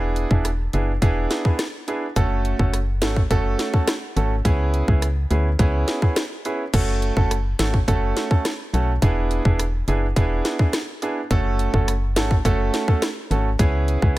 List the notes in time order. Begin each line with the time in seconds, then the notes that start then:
Already playing: E1 B3 D4 E4 G#4
0.16 closed hi-hat
0.30 E1 B3 D4 E4 G#4, kick
0.45 cross-stick, closed hi-hat
0.73 F#1 B3 D4 E4 G#4, closed hi-hat
1.02 E1 B3 D4 E4 G#4, kick, closed hi-hat
1.31 snare, closed hi-hat
1.45 B3 D4 E4 G#4, kick
1.59 cross-stick, snare, closed hi-hat
1.88 B3 D4 E4 G#4, closed hi-hat
2.16 F#1 A3 C#4 F#4 A4, kick, closed hi-hat
2.45 closed hi-hat
2.59 F#1 A3 C#4 F#4 A4, kick
2.73 cross-stick, closed hi-hat
3.02 G#1 A3 C#4 F#4 A4, snare, closed hi-hat
3.16 kick
3.31 F#1 A3 C#4 F#4 A4, kick, closed hi-hat
3.59 snare, closed hi-hat
3.73 A3 C#4 F#4 A4, kick
3.87 cross-stick, snare, closed hi-hat
4.16 G#1 A3 C#4 F#4 A4, closed hi-hat
4.45 C#2 B3 C#4 E4 G#4, kick, closed hi-hat
4.74 closed hi-hat
4.88 C#2 B3 C#4 E4 G#4, kick
5.02 cross-stick, closed hi-hat
5.30 D2 B3 C#4 E4 G#4, closed hi-hat
5.59 C#2 B3 C#4 E4 G#4, kick, closed hi-hat
5.88 snare, closed hi-hat
6.02 B3 C#4 E4 G#4, kick
6.16 cross-stick, snare, closed hi-hat
6.45 B3 C#4 E4 G#4, closed hi-hat
6.74 F#1 A3 C#4 F#4 A4, kick, closed hi-hat, crash
7.02 closed hi-hat
7.16 F#1 A3 C#4 F#4 A4, kick
7.31 cross-stick, closed hi-hat
7.59 G#1 A3 C#4 F#4 A4, snare, closed hi-hat
7.74 kick
7.88 F#1 A3 C#4 F#4 A4, kick, closed hi-hat
8.17 snare, closed hi-hat
8.31 A3 C#4 F#4 A4, kick
8.45 cross-stick, snare, closed hi-hat
8.73 B1 A3 C#4 F#4 A4, closed hi-hat
9.02 E1 B3 D4 E4 G#4, kick, closed hi-hat
9.31 closed hi-hat
9.45 E1 B3 D4 E4 G#4, kick
9.59 cross-stick, closed hi-hat
9.88 F#1 B3 D4 E4 G#4, closed hi-hat
10.16 E1 B3 D4 E4 G#4, kick, closed hi-hat
10.45 snare, closed hi-hat
10.59 B3 D4 E4 G#4, kick
10.73 cross-stick, snare, closed hi-hat
11.02 B3 D4 E4 G#4, closed hi-hat
11.31 F#1 A3 C#4 F#4 A4, kick, closed hi-hat
11.59 closed hi-hat
11.74 F#1 A3 C#4 F#4 A4, kick
11.88 cross-stick, closed hi-hat
12.16 G#1 A3 C#4 F#4 A4, snare, closed hi-hat
12.31 kick
12.45 F#1 A3 C#4 F#4 A4, kick, closed hi-hat
12.74 snare, closed hi-hat
12.88 A3 C#4 F#4 A4, kick
13.02 cross-stick, snare, closed hi-hat
13.31 G#1 A3 C#4 F#4 A4, closed hi-hat
13.59 C#2 B3 C#4 E4 G#4, kick, closed hi-hat
13.88 closed hi-hat
14.02 C#2 B3 C#4 E4 G#4, kick